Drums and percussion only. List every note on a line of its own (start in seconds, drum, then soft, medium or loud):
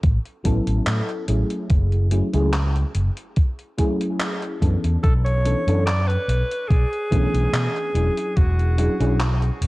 0.03 kick loud
0.03 closed hi-hat medium
0.26 closed hi-hat soft
0.45 kick medium
0.45 closed hi-hat medium
0.67 closed hi-hat medium
0.87 clap loud
0.87 closed hi-hat medium
1.09 closed hi-hat soft
1.28 closed hi-hat medium
1.50 closed hi-hat medium
1.70 kick loud
1.70 closed hi-hat medium
1.92 closed hi-hat soft
2.11 closed hi-hat medium
2.33 closed hi-hat soft
2.53 clap loud
2.53 closed hi-hat soft
2.76 closed hi-hat soft
2.95 closed hi-hat medium
3.17 closed hi-hat medium
3.36 kick loud
3.36 closed hi-hat medium
3.59 closed hi-hat soft
3.78 kick medium
3.78 closed hi-hat medium
4.01 closed hi-hat soft
4.20 clap loud
4.20 closed hi-hat medium
4.42 closed hi-hat soft
4.62 kick medium
4.62 closed hi-hat medium
4.84 closed hi-hat soft
5.04 kick loud
5.04 closed hi-hat soft
5.26 closed hi-hat soft
5.45 closed hi-hat medium
5.68 closed hi-hat medium
5.87 clap loud
5.87 closed hi-hat soft
6.10 closed hi-hat soft
6.29 closed hi-hat medium
6.51 closed hi-hat soft
6.70 kick loud
6.70 closed hi-hat soft
6.93 closed hi-hat soft
7.12 kick medium
7.12 closed hi-hat medium
7.35 closed hi-hat soft
7.54 clap loud
7.54 closed hi-hat medium
7.76 closed hi-hat soft
7.95 closed hi-hat medium
8.17 closed hi-hat soft
8.37 kick loud
8.37 closed hi-hat medium
8.59 closed hi-hat soft
8.78 closed hi-hat medium
9.01 closed hi-hat soft
9.20 clap loud
9.20 closed hi-hat soft
9.42 closed hi-hat soft
9.62 closed hi-hat medium